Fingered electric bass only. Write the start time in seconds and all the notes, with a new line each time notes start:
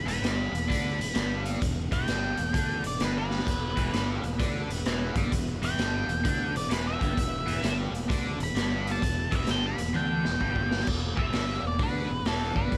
0.06 E1
0.22 G1
0.52 E1
0.71 D2
0.99 E1
1.16 G1
1.62 E1
1.92 E1
2.09 G1
2.39 E1
2.54 D2
2.86 E1
3.01 G1
3.47 E1
3.77 E1
3.94 G1
4.24 E1
4.40 D2
4.70 E1
4.86 E1
5.15 G1
5.32 E1
5.62 E1
5.78 G1
6.08 E1
6.25 D2
6.55 E1
6.72 E1
7.01 G1
7.17 E1
7.47 E1
7.63 G1
7.91 E1
8.10 D2
8.38 E1
8.55 G1
9.03 E1
9.32 E1
9.48 G1
9.79 E1
9.96 D2
10.24 E1
10.41 G1
10.88 E1
11.17 E1
11.34 G1
11.63 E1
11.79 D2
12.10 E1
12.25 E1
12.56 G1
12.72 E1